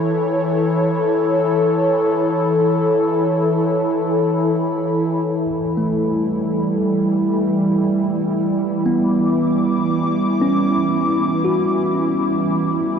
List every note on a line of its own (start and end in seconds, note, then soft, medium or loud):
0.00 12.99 E3 medium
0.00 12.99 E4 medium
0.00 6.95 A4 medium
0.00 5.27 C#5 medium
5.77 7.67 A3 soft
5.87 12.99 G3 medium
8.86 10.75 B3 medium
8.86 12.99 D6 medium
10.41 12.28 C#4 medium
11.45 12.99 F#4 medium